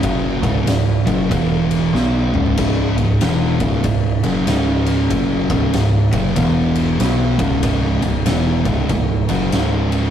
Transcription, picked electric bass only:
X:1
M:4/4
L:1/8
Q:"Swing" 1/4=95
K:C#m
V:1 name="Picked electric bass" clef=bass
F,,, C,,, C,,, F,,, E,,,2 B,,, C,,, | C,,, C,,, E,,, C,,, C,,, F,,, C,,,2 | F,,, C,,, C,,, F,,, E,,,2 B,,, C,,, | C,,, C,,, E,,, C,,, C,,, F,,, C,,,2 |]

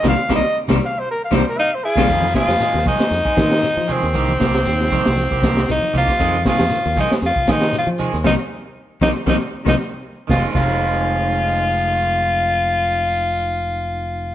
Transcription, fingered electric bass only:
X:1
M:4/4
L:1/16
Q:"Swing 16ths" 1/4=117
K:Fm
V:1 name="Fingered electric bass" clef=bass
C,, z C,, z2 C,, z4 C,, z4 C,, | F,,2 z F,, z E,, z2 F,, z E,2 z F,2 E,, | C,,2 C,,2 E,,2 z C,,2 C,,3 C,, z C,, z | F,,2 z F,, z E,, z2 F,, z E,2 z F,2 E,, |
C,, z4 z C,, z C,, z2 C,, z4 | F,,, z F,,,12- F,,,2- | F,,,16 |]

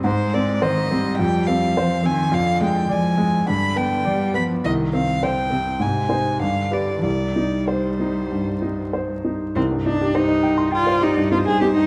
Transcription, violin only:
X:1
M:4/4
L:1/8
Q:1/4=103
K:Cm
V:1 name="Violin"
c d e2 g f2 a | f g a2 =b g2 b | e f g2 a2 f d | d2 c4 z2 |
z4 d2 c2 |]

